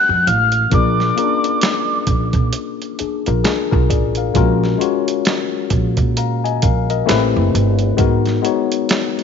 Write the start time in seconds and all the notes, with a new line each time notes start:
Already playing: F#6
0.09 F2
0.27 A1 F6, closed hi-hat
0.52 closed hi-hat
0.70 A#1 A#3 D4 F4 G#4 A#4 D6, kick, closed hi-hat
1.00 snare
1.16 A#3 C#4 F4 G#4 A#4, closed hi-hat
1.23 D4
1.44 closed hi-hat
1.61 finger snap, snare, closed hi-hat
2.07 A#1, kick, closed hi-hat
2.33 A#2, kick, closed hi-hat
2.53 closed hi-hat
2.82 closed hi-hat
2.99 D4 G#4, muted upright bass stroke, closed hi-hat
3.26 A#1 F4 A#4, closed hi-hat
3.44 D4 G#4, finger snap, snare, closed hi-hat
3.71 B1 F4 A#4, kick
3.90 A1 G#4 D5, kick, closed hi-hat
4.15 A#4 F5, closed hi-hat
4.34 A#1 G#3 C#4 F4 F#4 A#4, kick, closed hi-hat
4.64 snare
4.78 G#3 C#4 F4 F#4 C#5, closed hi-hat
5.08 closed hi-hat
5.25 finger snap, snare, closed hi-hat
5.70 A#1, kick, closed hi-hat
5.97 A#2, kick, closed hi-hat
6.17 F5 A#5, closed hi-hat
6.44 D#5 G#5, closed hi-hat
6.62 A#1 A#4 F5, kick, closed hi-hat
6.90 A#4 D#5, closed hi-hat
7.06 A1 A3 C4 E4 G4 B4, finger snap, snare, closed hi-hat
7.36 F#1
7.55 G1, closed hi-hat
7.79 closed hi-hat
7.97 G#1 G#3 B3 D#4 F#4 A#4, kick, closed hi-hat
8.26 snare, closed hi-hat
8.42 G#3 B3 D#4 F#4 C#5, closed hi-hat
8.72 closed hi-hat
8.89 finger snap, snare, closed hi-hat
9.19 closed hi-hat